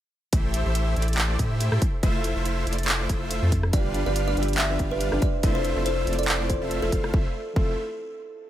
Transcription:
0.33 sub bass A1, supersaw synth A3 E4 G4 C5 E5, harp E4, kick, closed hi-hat
0.44 harp A4
0.54 harp E4, closed hi-hat
0.66 sub bass A1, supersaw synth A3 E4 G4 C5 E5, harp C5
0.75 harp E4, closed hi-hat
0.87 harp E5
0.97 sub bass A1, supersaw synth A3 E4 G4 C5 D5, harp E4, closed hi-hat
1.02 closed hi-hat
1.08 harp A4, closed hi-hat
1.13 closed hi-hat
1.18 harp E4, clap, closed hi-hat
1.30 harp C5
1.39 sub bass A2, supersaw synth A3 E4 G4 C5 E5, harp E4, kick, closed hi-hat
1.51 harp E5
1.60 harp E4, closed hi-hat
1.72 sub bass A2, supersaw synth A3 E4 G4 C5 E5, harp A4, cross-stick
1.82 harp E4, kick, closed hi-hat
1.94 harp C5
2.03 sub bass F1, supersaw synth A3 E4 F4 C5 E5, harp E4, kick, closed hi-hat
2.15 harp A4
2.24 harp E4, closed hi-hat
2.36 sub bass F1, supersaw synth A3 E4 F4 C5 E5, harp C5
2.46 harp E4, closed hi-hat
2.57 harp E5
2.67 sub bass F1, supersaw synth A3 E4 F4 C5 D5, harp E4, closed hi-hat
2.73 closed hi-hat
2.78 harp A4, closed hi-hat
2.83 closed hi-hat
2.88 harp E4, clap, closed hi-hat
3.00 harp C5
3.09 sub bass F1, supersaw synth A3 E4 F4 C5 E5, harp E4, kick, closed hi-hat
3.21 harp E5
3.31 harp E4, closed hi-hat
3.42 sub bass F2, supersaw synth A3 E4 F4 C5 E5, harp A4
3.52 harp E4, kick, closed hi-hat
3.63 harp C5, cross-stick
3.72 sub bass G1, felt piano F3 B3 D4 G4, supersaw synth G3 D4 F4 B4 F5, harp D4, kalimba D5, kick, closed hi-hat
3.85 harp G4
3.94 harp D4, closed hi-hat
4.05 sub bass G1, felt piano F3 B3 D4 G4, supersaw synth G3 D4 F4 B4 F5, harp B4, kalimba D5
4.16 harp D4, closed hi-hat
4.27 harp D5, kalimba D5
4.36 sub bass G1, felt piano F3 B3 D4 G4, supersaw synth G3 D4 F4 B4 E5, harp D4, closed hi-hat
4.43 closed hi-hat
4.48 harp G4, closed hi-hat
4.53 closed hi-hat
4.58 harp D4, kalimba E5, clap, closed hi-hat
4.69 felt piano F3 B3 D4 G4, harp B4
4.79 sub bass G1, supersaw synth G3 D4 F4 B4 F5, harp D4, kick, closed hi-hat
4.90 felt piano F3 B3 D4 G4, kalimba B4, harp D5
5.01 harp D4, closed hi-hat
5.11 sub bass G1, felt piano F3 B3 D4 G4, supersaw synth G3 D4 F4 B4 F5, harp G4, cross-stick
5.22 harp E4, kalimba D5, kick, closed hi-hat
5.34 harp C5
5.42 sub bass F1, felt piano F3 C4 E4 A4, supersaw synth A3 E4 F4 C5 E5, harp E4, kick, closed hi-hat
5.55 harp A4, kalimba C5
5.65 harp E4, closed hi-hat
5.75 sub bass F1, felt piano F3 C4 E4 A4, supersaw synth A3 E4 F4 C5 E5, harp C5
5.86 harp E4, kalimba C5, closed hi-hat
5.98 harp E5
6.06 sub bass F1, felt piano F3 C4 E4 A4, supersaw synth A3 E4 F4 C5 D5, harp E4, closed hi-hat
6.13 closed hi-hat
6.19 harp A4, kalimba D5, closed hi-hat
6.23 closed hi-hat
6.28 harp E4, clap, closed hi-hat
6.39 felt piano F3 C4 E4 A4, harp C5
6.50 harp E4, kalimba C5, kick, closed hi-hat
6.60 sub bass F1, felt piano F3 C4 E4 A4, supersaw synth A3 E4 F4 C5 E5, harp E5
6.71 harp A4, closed hi-hat
6.82 sub bass F1, felt piano F3 C4 E4 A4, supersaw synth A3 E4 F4 C5 E5, harp E4, kalimba A4
6.92 sub bass F1, supersaw synth A3 E4 F4 C5 F5, harp C5, kick, closed hi-hat
7.04 harp A4, cross-stick
7.11 sub bass F1, felt piano F3 C4, supersaw synth A3 E4 F4 C5 E5, harp E4, kalimba A4, kick
7.15 felt piano E4 A4
7.53 sub bass F1, felt piano F3 C4, supersaw synth A3 E4 F4 C5 E5, harp E4, kalimba A4, kick
7.57 felt piano E4 A4

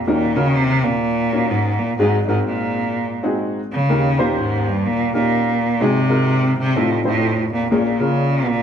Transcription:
Already playing: upright piano F5
0.07 upright piano D#2 D#3 A#3 C#4 D#4 F#4 A#4, cello A#2
0.36 cello C#3, upright piano A#3 C#4 D#4 F#4 A#4
0.56 cello C3
0.84 cello A#2
1.32 upright piano A#3 C#4 D#4 F#4 C#5
1.50 cello G#2
1.79 cello A#2
1.98 upright piano G#1 G#2 G#3 C4 D#4 F#4 G#4, cello G#2
2.26 cello G#2, upright piano G#3 C4 D#4 F#4 A#4
2.45 cello A#2
3.23 upright piano G#3 C4 D#4 F#4 G#4
3.72 cello C#3
3.89 upright piano D#2 D#3 A#3 C#4 D#4 G4 A#4
4.18 cello A#2, upright piano A#3 C#4 D#4 G4 C5
4.39 cello G#2
4.68 cello G2
4.86 cello A#2
5.13 cello A#2, upright piano A#3 C#4 D#4 G4 A#4
5.80 upright piano G#1 G#2 G#3 C4 D#4 F#4 G#4, cello C3
6.09 upright piano G#3 C4 D#4 F#4 A#4
6.58 cello C3
6.76 upright piano F1 F2 A3 C4 D#4 F4 A4, cello A2
7.04 cello A2, upright piano F#3 C4 D#4 F4 C5
7.10 upright piano A3
7.53 cello A#2
7.71 upright piano A#1 A#2 A#3 C#4 F4 G#4 A#4, cello A#2
7.99 cello C#3, upright piano A#3 C#4 F4 G#4 A#4
8.47 cello A#2

